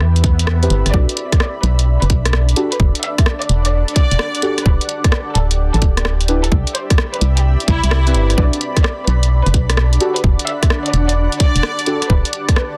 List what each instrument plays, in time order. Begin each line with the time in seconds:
Already playing: ambient pad C4 G4 E5 B5, analog synth pad B4
0.01 fm bass E2, cross-stick, swell
0.16 closed hi-hat
0.24 kick, closed hi-hat
0.39 closed hi-hat
0.47 cross-stick
0.63 synth stab C4 E4 G4 B4, closed hi-hat
0.70 fm bass G1, closed hi-hat
0.86 fm bass G1, cross-stick, closed hi-hat
0.93 fm bass B1, synth stab D4 F#4 A4 B4, ambient pad D4, violin section D5, analog synth pad D5, kick
1.09 closed hi-hat
1.16 ambient pad A4, closed hi-hat
1.32 kick, cross-stick, closed hi-hat
1.40 violin section D5, cross-stick
1.63 fm bass B1, violin section B4, ambient pad F#5, closed hi-hat
1.79 closed hi-hat
2.02 fm bass F#1, violin section B4, closed hi-hat
2.10 fm bass B1, kick, closed hi-hat
2.25 cross-stick, closed hi-hat
2.33 cross-stick
2.49 closed hi-hat
2.56 synth stab D4 F#4 G4 A4, closed hi-hat
2.72 violin section B4, closed hi-hat
2.80 fm bass E1, kick
2.95 closed hi-hat
3.02 ambient pad G4, violin section E5, closed hi-hat
3.18 kick, cross-stick, closed hi-hat
3.26 cross-stick
3.42 violin section D5, closed hi-hat
3.49 fm bass E1, ambient pad A5, closed hi-hat
3.65 violin section D5, closed hi-hat
3.88 closed hi-hat
3.96 violin section D5, kick, closed hi-hat
4.11 fm bass E1, closed hi-hat
4.19 cross-stick
4.35 closed hi-hat
4.42 synth stab D4 F#4 G4 A4, closed hi-hat
4.58 cross-stick, closed hi-hat
4.65 fm bass D1, violin section B4, kick
4.81 closed hi-hat
4.89 closed hi-hat
5.04 ambient pad E5, kick, cross-stick, closed hi-hat
5.12 violin section B4, cross-stick
5.35 fm bass D1, violin section A4, closed hi-hat
5.51 ambient pad B5, closed hi-hat
5.74 fm bass A1, violin section A4, closed hi-hat
5.82 fm bass D1, kick, closed hi-hat
5.97 cross-stick, closed hi-hat
6.05 cross-stick
6.21 closed hi-hat
6.28 synth stab D4 E4 G4 B4, closed hi-hat
6.44 violin section A4, closed hi-hat
6.52 fm bass C2, ambient pad C4, kick
6.67 closed hi-hat
6.75 violin section C5, closed hi-hat
6.90 kick, cross-stick, closed hi-hat
6.98 cross-stick
7.14 violin section B4, closed hi-hat
7.21 fm bass C2, closed hi-hat
7.37 violin section G4, closed hi-hat
7.60 closed hi-hat
7.68 fm bass C2, violin section E4, kick, closed hi-hat
7.84 fm bass C2, closed hi-hat
7.91 cross-stick
8.07 synth stab C4 E4 G4 B4, closed hi-hat
8.15 fm bass G1, closed hi-hat
8.30 cross-stick, closed hi-hat
8.37 fm bass B1, ambient pad D4, synth stab D4 F#4 A4 B4, analog synth pad D5, violin section D5, kick
8.53 closed hi-hat
8.60 ambient pad F#5, closed hi-hat
8.72 ambient pad A4
8.77 kick, cross-stick, closed hi-hat
8.84 violin section D5, cross-stick
9.07 fm bass B1, violin section B4, closed hi-hat
9.23 closed hi-hat
9.46 fm bass F#1, violin section B4, closed hi-hat
9.54 fm bass B1, kick, closed hi-hat
9.70 cross-stick, closed hi-hat
9.77 cross-stick
9.93 closed hi-hat
10.00 synth stab D4 F#4 G4 A4, closed hi-hat
10.16 violin section B4, closed hi-hat
10.24 fm bass E1, kick
10.39 closed hi-hat
10.45 ambient pad G4, violin section E5, closed hi-hat
10.63 kick, cross-stick, closed hi-hat
10.70 cross-stick
10.86 violin section D5, closed hi-hat
10.93 fm bass E1, ambient pad A5, closed hi-hat
11.09 violin section D5, closed hi-hat
11.32 closed hi-hat
11.40 violin section D5, kick, closed hi-hat
11.56 fm bass E1, closed hi-hat
11.63 cross-stick
11.79 closed hi-hat
11.86 synth stab D4 F#4 G4 A4, closed hi-hat
12.02 cross-stick, closed hi-hat
12.10 fm bass D1, violin section B4, kick
12.25 closed hi-hat
12.32 ambient pad E5, closed hi-hat
12.49 kick, cross-stick, closed hi-hat
12.56 violin section B4, cross-stick